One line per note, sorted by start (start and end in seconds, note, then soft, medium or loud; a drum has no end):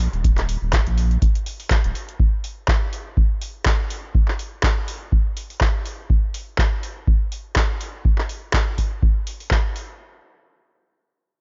0.00 open hi-hat loud
0.13 0.57 D#1 medium
0.13 closed hi-hat soft
0.24 kick loud
0.24 closed hi-hat medium
0.38 clap soft
0.38 closed hi-hat soft
0.49 open hi-hat loud
0.62 0.80 D#1 loud
0.73 kick loud
0.73 clap loud
0.73 closed hi-hat medium
0.87 1.18 A#1 loud
0.87 closed hi-hat soft
0.98 open hi-hat loud
1.11 closed hi-hat soft
1.22 kick loud
1.22 closed hi-hat medium
1.35 closed hi-hat soft
1.46 open hi-hat loud
1.60 open hi-hat medium
1.71 kick loud
1.71 clap loud
1.71 closed hi-hat medium
1.84 1.92 D#1 medium
1.84 closed hi-hat soft
1.95 open hi-hat loud
2.09 closed hi-hat soft
2.20 kick loud
2.44 open hi-hat medium
2.68 kick loud
2.68 clap loud
2.93 open hi-hat loud
3.17 kick loud
3.42 open hi-hat loud
3.66 kick loud
3.66 clap loud
3.90 open hi-hat loud
4.15 kick loud
4.28 clap soft
4.39 open hi-hat loud
4.63 kick loud
4.63 clap loud
4.88 open hi-hat loud
5.12 kick loud
5.37 open hi-hat medium
5.50 open hi-hat medium
5.61 kick loud
5.61 clap loud
5.86 open hi-hat loud
6.10 kick loud
6.34 open hi-hat medium
6.58 kick loud
6.58 clap loud
6.83 open hi-hat medium
7.08 kick loud
7.32 open hi-hat medium
7.56 kick loud
7.56 clap loud
7.81 open hi-hat medium
8.05 kick loud
8.18 clap soft
8.29 open hi-hat loud
8.53 kick loud
8.53 clap loud
8.78 kick medium
8.78 open hi-hat medium
9.03 kick loud
9.27 open hi-hat loud
9.40 open hi-hat medium
9.51 kick loud
9.51 clap loud
9.76 open hi-hat medium